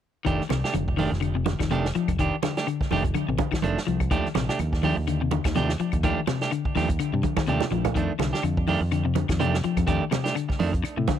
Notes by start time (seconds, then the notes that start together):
0.25 F1 D#3 A3 D4 G4, kick, closed hi-hat
0.41 snare
0.49 C2 C3, muted clean electric guitar stroke, snare, closed hi-hat, high conga, claves
0.64 A3 D4 G4, snare
0.74 F1 D3, muted clean electric guitar stroke, closed hi-hat, high conga, claves
0.88 muted clean electric guitar stroke, kick
0.97 D#3 A3 D4 G4, open hi-hat, high conga
1.12 F1, muted clean electric guitar stroke, snare
1.21 D3, closed hi-hat, claves
1.35 C3, muted clean electric guitar stroke
1.46 D3, snare, closed hi-hat, high conga
1.59 F1 D#3, muted clean electric guitar stroke, kick, snare, closed hi-hat, claves
1.71 C3 D#3 A3 D4 G4, closed hi-hat, high conga
1.85 snare
1.95 F3, muted clean electric guitar stroke, closed hi-hat
2.08 F1, muted clean electric guitar stroke, kick, closed hi-hat, claves
2.19 D#3 D4 G4, muted clean electric guitar stroke, kick, closed hi-hat
2.43 D3, muted clean electric guitar stroke, snare, closed hi-hat, high conga, claves
2.57 A3 D4 G4, snare, closed hi-hat
2.67 D3, muted clean electric guitar stroke, closed hi-hat, claves
2.81 muted clean electric guitar stroke, kick, snare
2.91 F1 D#3 A3 D4 G4, open hi-hat, high conga
3.04 muted clean electric guitar stroke, kick, closed hi-hat
3.14 D3, closed hi-hat, high conga, claves
3.28 A1 C3, muted clean electric guitar stroke
3.38 D3, kick, closed hi-hat, high conga
3.52 D#3, muted fingered electric bass stroke, muted clean electric guitar stroke, kick, snare, claves
3.62 F1 D#3 A3 D4, muted clean electric guitar stroke, closed hi-hat, high conga
3.78 snare
3.87 C2 F3, muted clean electric guitar stroke, closed hi-hat
4.00 muted clean electric guitar stroke, kick, closed hi-hat, claves
4.11 D#2 D#3 F3 A3 D4 G4, kick, closed hi-hat
4.25 snare
4.35 A#1 C3, muted clean electric guitar stroke, snare, closed hi-hat, high conga, claves
4.49 A3 D4 G4, snare
4.59 D#2, muted clean electric guitar stroke, closed hi-hat, high conga, claves
4.73 muted clean electric guitar stroke, kick, snare
4.83 D#3 F3 A3 D4 G4, open hi-hat, high conga
4.97 D#2, muted clean electric guitar stroke
5.07 D3, closed hi-hat, claves
5.21 C3, muted clean electric guitar stroke
5.31 D3, closed hi-hat, high conga
5.44 D#2 D#3, muted clean electric guitar stroke, kick, snare, closed hi-hat, claves
5.55 C3 F3 A3 D4 G4, snare, closed hi-hat, high conga
5.69 snare
5.79 F3, muted fingered electric bass stroke, muted clean electric guitar stroke, closed hi-hat
5.92 D#2, muted clean electric guitar stroke, kick, closed hi-hat, claves
6.03 D#3 F3 A3 D4 G4, kick, closed hi-hat
6.27 C3, muted clean electric guitar stroke, snare, closed hi-hat, high conga, claves
6.41 A3 D4 G4, snare, closed hi-hat
6.51 D3, muted clean electric guitar stroke, closed hi-hat, claves
6.65 muted clean electric guitar stroke, kick
6.75 D#2 D#3 F3 A3 D4 G4, snare, open hi-hat, high conga
6.89 muted clean electric guitar stroke, kick, closed hi-hat
6.99 D3, closed hi-hat, claves
7.13 G2 C3, muted clean electric guitar stroke
7.23 D3, kick, closed hi-hat, high conga
7.37 D#3, muted fingered electric bass stroke, muted clean electric guitar stroke, kick, snare, high conga, claves
7.47 D#2 C3 F3 A3 D4 G4, closed hi-hat
7.60 snare, low conga
7.71 A#1 F3, muted clean electric guitar stroke, closed hi-hat, low conga
7.85 muted clean electric guitar stroke, kick, closed hi-hat, low conga, claves
7.95 F2 D#3 A3 D4, muted clean electric guitar stroke, kick, closed hi-hat
8.19 C2 D3, muted clean electric guitar stroke, snare, closed hi-hat, high conga, claves
8.33 D4 G4, snare
8.43 F2 D3, muted clean electric guitar stroke, closed hi-hat, claves
8.57 muted clean electric guitar stroke, kick
8.67 D#3 A3 D4 G4, open hi-hat, high conga
8.81 F2, muted clean electric guitar stroke
8.92 D3, closed hi-hat, claves
9.05 C3, muted clean electric guitar stroke
9.15 D3, closed hi-hat, high conga
9.29 F2 D#3, muted clean electric guitar stroke, kick, snare, closed hi-hat, claves
9.39 C3 D#3 A3 D4 G4, closed hi-hat, high conga
9.54 snare
9.63 F3, muted clean electric guitar stroke, muted fingered electric bass stroke, closed hi-hat
9.77 F2, muted clean electric guitar stroke, kick, closed hi-hat, high conga, claves
9.87 D#3 A3 D4 G4, kick, closed hi-hat
10.11 C3, muted clean electric guitar stroke, snare, closed hi-hat, high conga, claves
10.24 A3 D4 G4, snare, closed hi-hat
10.35 D3, muted clean electric guitar stroke, closed hi-hat, claves
10.49 muted clean electric guitar stroke, kick, snare
10.59 F2 D#3 A3 D4, open hi-hat, high conga
10.73 muted clean electric guitar stroke, kick, closed hi-hat
10.84 muted clean electric guitar stroke, closed hi-hat, claves
10.97 A2 C3, muted clean electric guitar stroke
11.08 D3, kick, snare, closed hi-hat, high conga